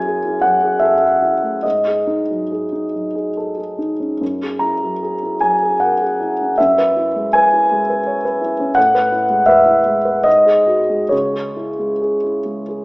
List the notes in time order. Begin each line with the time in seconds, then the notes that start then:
Already playing: F#2 F#3 E4 G#4 G#5
0.06 G#4
0.25 E4
0.41 F#3 F#5
0.62 G#4
0.79 A4 E5
1.01 G#4
1.22 E4
1.42 A3
1.63 G#2 D#5
1.87 G#4
2.07 D#4
2.31 F#3
2.52 G#4
2.72 D#4
2.94 F#3
3.15 G#4
3.37 A4
3.57 G#4
3.79 D#4
4.00 C#4
4.21 F#2
4.42 G#4
4.59 E4 A#5
4.83 F#3
5.03 G#4
5.23 E4
5.40 F#3 G#5
5.63 G#4
5.80 A#4 F#5
6.02 G#4
6.20 E4
6.41 C#4
6.58 F#2 E5
6.78 B4
6.96 E4
7.16 G#3
7.33 B4 G#5
7.53 E4
7.71 G#3
7.90 B4
8.07 C#5
8.25 B4
8.41 E4
8.60 C#4
8.75 A2 F#5
8.95 B4
9.12 E4
9.30 G#3
9.46 B4 E5
9.66 E4
9.85 G#3
10.05 B4
10.24 G#2 D#5
10.45 G#4
10.67 F#4
10.89 G#3
11.09 C#2 C#5
11.33 G#4
11.56 E4
11.79 G#3
12.01 G#4
12.24 E4
12.45 G#3
12.68 G#4